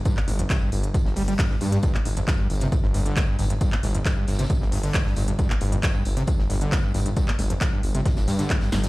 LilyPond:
<<
  \new Staff \with { instrumentName = "Acid bass" } { \clef bass \time 4/4 \key g \phrygian \tempo 4 = 135 g,16 bes,16 aes,16 f,16 c16 g,16 r8 g,16 g,16 g16 g16 g,16 g,16 g,16 g,16 | g,16 bes,16 aes,16 f,16 r16 g,16 r16 c16 g,16 g,16 g,16 d16 aes,16 g,16 g,16 g,16 | g,16 bes,16 aes,16 f,16 r16 g,16 r16 c16 g,16 g,16 g,16 d16 aes,16 g,16 g,16 g,16 | g,16 bes,16 aes,16 f,16 r16 g,16 r16 c16 g,16 g,16 g,16 d16 aes,16 g,16 g,16 g,16 |
g,16 bes,16 aes,16 f,16 r16 g,16 r16 c16 g,16 g,16 g,16 d16 aes,16 g,16 g,16 g,16 | }
  \new Staff \with { instrumentName = "Detuned saw bass" } { \clef bass \time 4/4 \key g \phrygian r8 g,,16 r8. g,,16 r8 g,,16 g,,16 r8. g,16 r16 | r8 g,,16 r8. g,,16 r8 g,,16 g,,16 r8. g,,16 r16 | r8 g,,16 r8. g,,16 r8 g,,16 g,,16 r8. g,,16 r16 | r8 g,,16 r8. g,,16 r8 g,,16 g,,16 r8. g,,16 r16 |
r8 g,,16 r8. g,,16 r8 g,,16 g,16 r8. g,,16 r16 | }
  \new DrumStaff \with { instrumentName = "Drums" } \drummode { \time 4/4 <hh bd tamb>16 hc16 <hho tamb>16 hh16 <hc hh bd sn tamb>8 <hho tamb>16 hh16 <hh bd tamb>16 sn16 hho16 hh16 <hc hh bd sn tamb>16 sn16 <hho tamb>16 hh16 | <hh bd tamb>16 hc16 <hho tamb>16 hh16 <hc hh bd sn tamb>8 <hho tamb>16 hh16 <hh bd tamb>16 sn16 <hho sn tamb>16 hh16 <hc hh bd sn tamb>8 <hho tamb>16 hh16 | <hh bd tamb>16 hc16 <hho tamb>16 hh16 <hc hh bd sn tamb>8 <hho sn tamb>32 <sn tamb>32 <hh sn tamb>32 <sn tamb>32 <hh bd tamb>16 sn16 hho16 hh16 <hc hh bd sn tamb>16 sn16 <hho tamb>16 hh16 | <hh bd tamb>16 hc16 <hho tamb>16 hh16 <hc hh bd sn tamb>8 <hho tamb>16 hh16 <hh bd tamb>16 sn16 <hho sn tamb>16 hh16 <hc hh bd sn tamb>8 <hho tamb>16 hh16 |
<hh bd tamb>16 hc16 <hho tamb>16 hh16 <hc hh bd sn tamb>8 <hho tamb>16 hh16 <hh bd sn tamb>16 <sn tamb>16 <hho sn tamb>16 <hh sn tamb>16 <hc hh bd sn>16 <sn tamb>16 <hho sn tamb>16 <hh sn tamb>16 | }
>>